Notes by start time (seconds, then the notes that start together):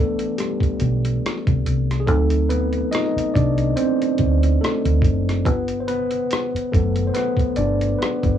Already playing: E3 A3 B3 D4 A4 B4 D5
0.19 closed hi-hat
0.38 G3 G4, cross-stick, closed hi-hat
0.61 kick, closed hi-hat
0.80 B1, closed hi-hat
1.05 closed hi-hat
1.26 cross-stick, closed hi-hat
1.47 C2, kick, closed hi-hat
1.66 C2, closed hi-hat
1.91 cross-stick, closed hi-hat
2.00 G#4
2.07 D2 F#3 A3 C4 D#4 A4, kick, closed hi-hat
2.30 closed hi-hat
2.49 B3 B4, closed hi-hat
2.73 closed hi-hat
2.91 D#4 D#5, cross-stick, closed hi-hat
3.16 muted fingered electric bass stroke, closed hi-hat
3.34 C2 D4 D5, kick, closed hi-hat
3.58 closed hi-hat
3.76 C4 C5, closed hi-hat
4.02 closed hi-hat
4.18 D2, kick, closed hi-hat
4.43 closed hi-hat
4.61 A3 A4, cross-stick, closed hi-hat
4.85 D2, closed hi-hat
5.02 F#1, kick, closed hi-hat
5.29 cross-stick, closed hi-hat
5.46 G1 B3 B4, kick, closed hi-hat
5.68 closed hi-hat
5.80 C5
5.88 B3 B4, closed hi-hat
6.11 closed hi-hat
6.31 cross-stick, closed hi-hat
6.54 muted fingered electric bass stroke, closed hi-hat
6.72 F#1 F#3 A3 B3 A4, kick, closed hi-hat
6.96 closed hi-hat
7.07 C5
7.14 B3 B4, cross-stick, closed hi-hat
7.37 kick, closed hi-hat
7.56 G1 D4 D5, closed hi-hat
7.81 closed hi-hat
7.98 B3 B4, closed hi-hat
8.02 cross-stick
8.23 G1, kick, closed hi-hat